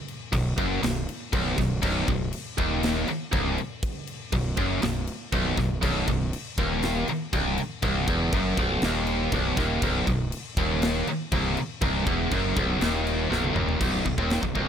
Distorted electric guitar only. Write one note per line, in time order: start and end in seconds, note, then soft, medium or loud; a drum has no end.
0.33 0.53 B1 medium
0.58 0.82 F#2 loud
0.83 1.03 B1 medium
1.33 1.56 B1 loud
1.58 1.78 B1 medium
1.82 2.07 B1 loud
2.08 2.28 B1 medium
2.58 3.07 D#2 loud
3.09 muted distorted electric guitar stroke medium
3.32 3.57 C2 loud
4.33 4.53 B1 medium
4.57 4.82 F#2 loud
4.82 5.03 B1 medium
5.33 5.56 B1 loud
5.58 5.78 B1 medium
5.82 6.06 B1 loud
6.08 6.28 B1 medium
6.59 7.08 D#2 loud
7.09 muted distorted electric guitar stroke medium
7.33 7.58 C2 loud
7.83 8.07 C2 loud
8.08 8.32 E2 loud
8.34 8.58 F#2 loud
8.59 8.83 B1 loud
8.84 9.33 D#2 loud
9.33 9.57 B1 loud
9.57 9.82 D#2 loud
9.83 10.06 B1 loud
10.07 10.27 B1 medium
10.58 11.07 D#2 loud
11.08 muted distorted electric guitar stroke medium
11.32 11.56 C2 loud
11.82 12.06 C2 loud
12.07 12.31 E2 loud
12.32 12.56 F#2 loud
12.57 12.81 B1 loud
12.81 13.30 D#2 loud
13.30 13.54 B1 loud
13.54 13.79 D#2 loud
13.80 14.04 B1 medium
14.05 14.18 B1 medium
14.18 14.42 D#2 medium
14.42 14.55 B1 medium
14.55 14.68 C2 loud